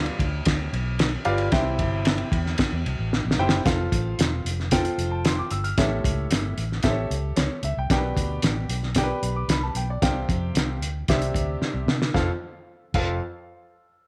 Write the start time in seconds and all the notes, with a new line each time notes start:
Already playing: G2 F4 G4 B4 D5 F5
0.06 ride
0.19 D2, kick, ride
0.45 D2, kick, snare, ride
0.73 B1, ride
0.99 snare, ride
1.25 G1 F4 G4 B4 D5 F5, ride
1.38 ride
1.52 C2 C3 E4 G4 C5 E5 G5, kick, snare, ride
1.79 G1, kick, ride
2.05 snare, ride
2.18 ride
2.32 E2, kick, ride
2.46 snare
2.58 kick, snare, ride
2.72 E2
2.86 C2, ride
2.99 A1
3.13 snare
3.25 A#1
3.31 snare
3.38 F#1 E4 G4 C5 E5 G5
3.49 snare
3.65 F1 F4 A4 C5 F5, kick, snare, closed hi-hat
3.92 A1, kick, closed hi-hat
4.19 E1, snare, closed hi-hat
4.45 F1, closed hi-hat
4.60 snare
4.71 F4 A4 C5 G5, kick, snare, closed hi-hat
4.85 closed hi-hat
4.98 F1, closed hi-hat
5.11 A5
5.25 C6, snare, closed hi-hat
5.39 D6
5.51 G1 E6, closed hi-hat
5.64 F6, closed hi-hat
5.77 A1 A2 G4 A4 C#5 E5, kick, snare, closed hi-hat
6.04 C#2, kick, closed hi-hat
6.30 G1, snare, closed hi-hat
6.58 A1, closed hi-hat
6.72 snare
6.83 A1 G4 A4 C5 E5, kick, snare, closed hi-hat
6.90 C#5
7.10 C#2, closed hi-hat
7.36 C#2 C#5, snare, closed hi-hat
7.63 C#2 E5, closed hi-hat
7.77 C2 G5
7.90 B1 B2 G4 A#4 D5 G5, kick, snare, closed hi-hat
7.98 B4
8.17 D2, kick, closed hi-hat
8.42 A1, snare, closed hi-hat
8.69 B1, closed hi-hat
8.83 snare
8.95 G4 A#4 D5 G5, kick, snare, closed hi-hat
9.03 B4
9.23 B1, closed hi-hat
9.36 D6
9.48 C2 B5, snare, closed hi-hat
9.63 A5
9.75 B1 G5, closed hi-hat
9.90 D5
10.02 C2 C3 G4 C5 F5 G5, kick, snare, closed hi-hat
10.29 F2, kick, closed hi-hat
10.55 C2, snare, closed hi-hat
10.81 D2, closed hi-hat
11.08 C2 C3 G4 C5 D5 E5, kick, snare, closed hi-hat
11.22 closed hi-hat
11.34 D2, kick, closed hi-hat
11.61 muted fingered electric bass stroke, snare
11.74 C2
11.87 C3, snare
12.02 snare
12.14 F1 F2 F4 A4 C5 F5, kick, snare
12.94 F1 F2 F4 A4 C5 F5, kick, crash